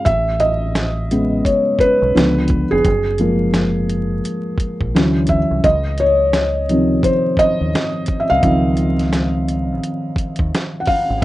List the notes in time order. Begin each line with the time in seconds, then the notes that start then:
0.05 A1 E5, kick, closed hi-hat
0.40 D#5, closed hi-hat
0.75 snare, closed hi-hat
1.11 C#3 G#3 B3, closed hi-hat
1.45 C#5, kick, closed hi-hat
1.79 B4, kick, closed hi-hat
2.02 B1
2.15 C#2 D3 F3 B3, snare, closed hi-hat
2.48 kick, closed hi-hat
2.71 F1 G#4
2.85 F#1, kick, closed hi-hat
3.18 F3 G#3 A#3, closed hi-hat
3.54 snare, closed hi-hat
3.89 closed hi-hat
4.25 closed hi-hat
4.58 kick, closed hi-hat
4.81 A#1, kick
4.94 D2 E3 F#3 C#4, snare, closed hi-hat
5.27 E5, kick, closed hi-hat
5.51 C2
5.64 C#2 D#5, kick, closed hi-hat
5.98 C#5, closed hi-hat
6.33 snare, closed hi-hat
6.69 C3 D#3 F3, closed hi-hat
7.03 C5, kick, closed hi-hat
7.37 D#5, kick, closed hi-hat
7.61 D#2
7.75 snare, closed hi-hat
8.06 kick, closed hi-hat
8.20 E5
8.30 C2 F5
8.42 C#2 D#3 F3 C4, kick, closed hi-hat
8.77 closed hi-hat
8.99 snare, closed hi-hat
9.13 snare, closed hi-hat
9.48 closed hi-hat
9.83 closed hi-hat
10.16 kick, closed hi-hat
10.36 D#2, kick, closed hi-hat
10.55 snare, closed hi-hat
10.80 F#5
10.86 F5, kick, open hi-hat
11.10 G#1